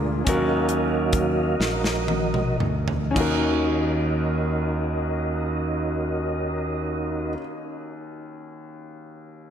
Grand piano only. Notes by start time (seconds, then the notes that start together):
Already playing: D4 F4 G#4 A#4
0.25 D#3 C#4 D#4 F#4
0.29 A#4
3.11 C#4 D#4
3.15 D#2 F#4
3.20 A#4